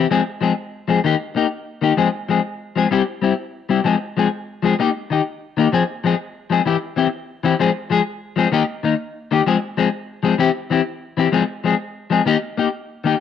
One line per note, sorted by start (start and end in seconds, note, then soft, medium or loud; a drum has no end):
0.11 0.20 F3 medium
0.11 0.20 G#3 medium
0.11 0.21 C4 medium
0.11 0.21 G#4 medium
0.41 0.51 F3 medium
0.41 0.51 G#3 medium
0.41 0.52 C4 medium
0.41 0.52 G#4 medium
0.88 0.98 F3 medium
0.88 0.98 G#3 medium
0.88 0.99 C4 medium
0.88 0.99 G#4 medium
1.04 1.14 D#3 medium
1.04 1.14 A#3 medium
1.04 1.15 D#4 medium
1.04 1.15 G4 medium
1.35 1.46 A#3 medium
1.35 1.46 D#4 medium
1.35 1.46 G4 medium
1.35 muted clean electric guitar stroke medium
1.81 1.92 D#3 medium
1.81 1.92 A#3 medium
1.81 1.92 D#4 medium
1.81 1.93 G4 medium
1.97 2.07 F3 medium
1.97 2.07 G#3 medium
1.97 2.08 C4 medium
1.97 2.08 G#4 medium
2.29 2.39 F3 medium
2.29 2.39 G#3 medium
2.29 2.40 C4 medium
2.29 2.40 G#4 medium
2.76 2.86 F3 medium
2.76 2.86 G#3 medium
2.76 2.86 C4 medium
2.76 2.87 G#4 medium
2.91 3.01 G3 medium
2.91 3.01 C4 medium
2.91 3.02 E4 medium
2.91 3.02 G4 medium
3.22 3.32 G3 medium
3.22 3.32 C4 medium
3.22 3.33 E4 medium
3.22 3.33 G4 medium
3.69 3.79 G3 medium
3.69 3.79 C4 medium
3.69 3.80 E4 medium
3.69 3.80 G4 medium
3.84 3.94 F3 medium
3.84 3.95 G#3 medium
3.84 3.95 C4 medium
3.84 3.95 G#4 medium
4.17 4.26 F3 medium
4.17 4.27 G#3 medium
4.17 4.27 C4 medium
4.17 4.27 G#4 medium
4.62 4.73 F3 medium
4.62 4.73 G#3 medium
4.62 4.74 C4 medium
4.62 4.74 G#4 medium
4.79 4.89 A#3 medium
4.79 4.89 D#4 medium
4.79 4.89 G4 medium
4.79 muted clean electric guitar stroke medium
5.10 5.20 D#3 medium
5.10 5.21 D#4 medium
5.10 5.21 G4 medium
5.57 5.67 D#3 medium
5.57 5.67 A#3 medium
5.57 5.67 D#4 medium
5.57 5.68 G4 medium
5.72 5.82 F3 medium
5.72 5.82 C4 medium
5.72 5.83 G#4 medium
5.72 muted clean electric guitar stroke medium
6.04 6.13 F3 medium
6.04 6.14 G#3 medium
6.04 6.14 C4 medium
6.04 6.15 G#4 medium
6.50 6.60 F3 medium
6.50 6.60 G#3 medium
6.50 6.61 C4 medium
6.50 6.61 G#4 medium
6.65 6.75 E3 medium
6.65 6.76 E4 medium
6.65 6.76 G4 medium
6.65 muted clean electric guitar stroke medium
6.96 7.06 E3 medium
6.96 7.07 C4 medium
6.96 7.07 E4 medium
6.96 7.07 G4 medium
7.43 7.53 E3 medium
7.43 7.54 C4 medium
7.43 7.54 E4 medium
7.43 7.54 G4 medium
7.59 7.69 F3 medium
7.59 7.69 G#3 medium
7.59 7.69 C4 medium
7.59 7.70 G#4 medium
7.90 8.00 F3 medium
7.90 8.00 G#3 medium
7.90 8.01 G#4 medium
7.90 muted clean electric guitar stroke medium
8.36 8.46 F3 medium
8.36 8.47 G#3 medium
8.36 8.47 C4 medium
8.36 8.47 G#4 medium
8.52 8.62 D#3 medium
8.52 8.62 A#3 medium
8.52 8.63 D#4 medium
8.52 8.63 G4 loud
8.83 8.93 D#3 medium
8.83 8.94 A#3 medium
8.83 8.94 D#4 medium
9.31 9.40 D#3 medium
9.31 9.41 A#3 medium
9.31 9.41 D#4 medium
9.31 9.41 G4 medium
9.46 9.56 F3 medium
9.46 9.56 G#3 medium
9.46 9.56 C4 medium
9.46 9.57 G#4 medium
9.77 9.87 F3 medium
9.77 9.87 G#3 medium
9.77 9.87 C4 medium
9.77 9.88 G#4 medium
10.23 10.33 F3 medium
10.23 10.33 G#3 medium
10.23 10.34 C4 medium
10.23 10.34 G#4 medium
10.38 10.48 E3 medium
10.38 10.49 C4 medium
10.38 10.49 E4 medium
10.38 10.49 G4 medium
10.70 10.80 E3 medium
10.70 10.80 C4 medium
10.70 10.81 E4 medium
10.70 10.81 G4 medium
11.17 11.27 E3 medium
11.17 11.27 C4 medium
11.17 11.28 E4 medium
11.17 11.28 G4 medium
11.32 11.42 F3 medium
11.32 11.42 G#3 medium
11.32 11.43 C4 medium
11.32 11.43 G#4 medium
11.64 11.73 F3 medium
11.64 11.74 G#3 medium
11.64 11.74 C4 medium
11.64 11.75 G#4 medium
12.10 12.20 F3 medium
12.10 12.20 G#3 medium
12.10 12.21 C4 medium
12.10 12.21 G#4 medium
12.26 12.35 D#3 medium
12.26 12.36 A#3 medium
12.26 12.36 D#4 medium
12.26 12.36 G4 medium
12.57 12.67 A#3 medium
12.57 12.67 D#4 medium
12.57 12.68 G4 medium
13.04 13.13 D#3 medium
13.04 13.14 A#3 medium
13.04 13.14 D#4 medium
13.04 13.15 G4 medium